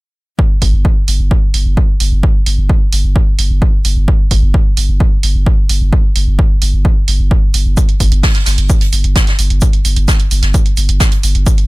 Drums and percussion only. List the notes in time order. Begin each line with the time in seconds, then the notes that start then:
0.39 kick
0.62 kick, open hi-hat
0.85 kick
1.08 open hi-hat
1.31 kick
1.54 open hi-hat
1.77 kick
2.00 open hi-hat
2.23 kick
2.46 open hi-hat
2.69 kick
2.93 open hi-hat
3.16 kick
3.39 open hi-hat
3.62 kick
3.85 open hi-hat
4.08 kick
4.31 kick, open hi-hat
4.54 kick
4.77 open hi-hat
5.00 kick
5.23 open hi-hat
5.46 kick
5.69 open hi-hat
5.93 kick
6.16 open hi-hat
6.39 kick
6.62 open hi-hat
6.85 kick
7.08 open hi-hat
7.31 kick
7.54 open hi-hat
7.77 kick, closed hi-hat, shaker
7.89 closed hi-hat
8.00 kick, open hi-hat, shaker
8.12 closed hi-hat
8.23 kick, snare, closed hi-hat, open hi-hat
8.34 snare, closed hi-hat
8.45 snare, open hi-hat, shaker
8.58 closed hi-hat
8.69 kick, closed hi-hat, shaker
8.81 closed hi-hat
8.93 open hi-hat, shaker
9.04 closed hi-hat
9.15 kick, snare, closed hi-hat, shaker
9.27 snare, closed hi-hat
9.39 open hi-hat, shaker
9.50 closed hi-hat
9.61 kick, closed hi-hat, shaker
9.73 closed hi-hat
9.85 open hi-hat, shaker
9.96 closed hi-hat
10.08 kick, snare, closed hi-hat, shaker
10.20 closed hi-hat
10.31 open hi-hat, shaker
10.42 snare, closed hi-hat
10.54 kick, closed hi-hat, shaker
10.66 closed hi-hat
10.77 open hi-hat, shaker
10.89 closed hi-hat
11.00 kick, snare, closed hi-hat, shaker
11.12 closed hi-hat
11.23 open hi-hat, shaker
11.35 closed hi-hat
11.46 kick, closed hi-hat, shaker
11.58 closed hi-hat